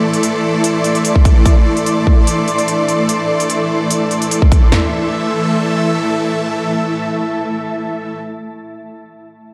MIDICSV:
0, 0, Header, 1, 4, 480
1, 0, Start_track
1, 0, Key_signature, 0, "minor"
1, 0, Tempo, 408163
1, 1712, Time_signature, 4, 2, 24, 8
1, 11218, End_track
2, 0, Start_track
2, 0, Title_t, "Ambient pad"
2, 0, Program_c, 0, 92
2, 0, Note_on_c, 0, 57, 94
2, 0, Note_on_c, 0, 64, 80
2, 0, Note_on_c, 0, 74, 89
2, 0, Note_on_c, 0, 84, 91
2, 5538, Note_off_c, 0, 57, 0
2, 5551, Note_off_c, 0, 74, 0
2, 5552, Note_on_c, 0, 57, 80
2, 5553, Note_off_c, 0, 64, 0
2, 5578, Note_off_c, 0, 84, 0
2, 5629, Note_on_c, 0, 64, 78
2, 5700, Note_on_c, 0, 76, 81
2, 5770, Note_on_c, 0, 81, 81
2, 9629, Note_off_c, 0, 57, 0
2, 9705, Note_off_c, 0, 64, 0
2, 9777, Note_off_c, 0, 76, 0
2, 9846, Note_off_c, 0, 81, 0
2, 11218, End_track
3, 0, Start_track
3, 0, Title_t, "Supersaw synth"
3, 0, Program_c, 1, 81
3, 0, Note_on_c, 1, 52, 82
3, 0, Note_on_c, 1, 57, 73
3, 0, Note_on_c, 1, 69, 73
3, 0, Note_on_c, 1, 74, 86
3, 5506, Note_off_c, 1, 52, 0
3, 5506, Note_off_c, 1, 57, 0
3, 5506, Note_off_c, 1, 69, 0
3, 5529, Note_off_c, 1, 74, 0
3, 5553, Note_on_c, 1, 52, 78
3, 5553, Note_on_c, 1, 69, 71
3, 5553, Note_on_c, 1, 76, 83
3, 5554, Note_on_c, 1, 57, 70
3, 9629, Note_off_c, 1, 52, 0
3, 9630, Note_off_c, 1, 57, 0
3, 9630, Note_off_c, 1, 69, 0
3, 9630, Note_off_c, 1, 76, 0
3, 11218, End_track
4, 0, Start_track
4, 0, Title_t, "Drums"
4, 158, Note_on_c, 9, 42, 47
4, 272, Note_off_c, 9, 42, 0
4, 272, Note_on_c, 9, 42, 71
4, 390, Note_off_c, 9, 42, 0
4, 752, Note_on_c, 9, 42, 72
4, 870, Note_off_c, 9, 42, 0
4, 991, Note_on_c, 9, 42, 47
4, 1109, Note_off_c, 9, 42, 0
4, 1117, Note_on_c, 9, 42, 46
4, 1231, Note_off_c, 9, 42, 0
4, 1231, Note_on_c, 9, 42, 71
4, 1349, Note_off_c, 9, 42, 0
4, 1358, Note_on_c, 9, 36, 55
4, 1471, Note_on_c, 9, 42, 46
4, 1472, Note_off_c, 9, 36, 0
4, 1472, Note_on_c, 9, 36, 93
4, 1589, Note_off_c, 9, 42, 0
4, 1590, Note_off_c, 9, 36, 0
4, 1711, Note_on_c, 9, 42, 72
4, 1712, Note_on_c, 9, 36, 108
4, 1829, Note_off_c, 9, 42, 0
4, 1830, Note_off_c, 9, 36, 0
4, 2078, Note_on_c, 9, 42, 47
4, 2192, Note_off_c, 9, 42, 0
4, 2192, Note_on_c, 9, 42, 72
4, 2309, Note_off_c, 9, 42, 0
4, 2432, Note_on_c, 9, 36, 55
4, 2550, Note_off_c, 9, 36, 0
4, 2672, Note_on_c, 9, 42, 76
4, 2790, Note_off_c, 9, 42, 0
4, 2913, Note_on_c, 9, 42, 47
4, 3030, Note_off_c, 9, 42, 0
4, 3039, Note_on_c, 9, 42, 48
4, 3152, Note_off_c, 9, 42, 0
4, 3152, Note_on_c, 9, 42, 72
4, 3270, Note_off_c, 9, 42, 0
4, 3393, Note_on_c, 9, 42, 49
4, 3510, Note_off_c, 9, 42, 0
4, 3633, Note_on_c, 9, 42, 75
4, 3751, Note_off_c, 9, 42, 0
4, 3999, Note_on_c, 9, 42, 51
4, 4112, Note_off_c, 9, 42, 0
4, 4112, Note_on_c, 9, 42, 77
4, 4230, Note_off_c, 9, 42, 0
4, 4592, Note_on_c, 9, 42, 76
4, 4710, Note_off_c, 9, 42, 0
4, 4833, Note_on_c, 9, 42, 49
4, 4950, Note_off_c, 9, 42, 0
4, 4959, Note_on_c, 9, 42, 50
4, 5073, Note_off_c, 9, 42, 0
4, 5073, Note_on_c, 9, 42, 75
4, 5190, Note_off_c, 9, 42, 0
4, 5199, Note_on_c, 9, 36, 56
4, 5312, Note_off_c, 9, 36, 0
4, 5312, Note_on_c, 9, 36, 91
4, 5312, Note_on_c, 9, 42, 50
4, 5430, Note_off_c, 9, 36, 0
4, 5430, Note_off_c, 9, 42, 0
4, 5552, Note_on_c, 9, 38, 98
4, 5552, Note_on_c, 9, 43, 100
4, 5669, Note_off_c, 9, 38, 0
4, 5669, Note_off_c, 9, 43, 0
4, 11218, End_track
0, 0, End_of_file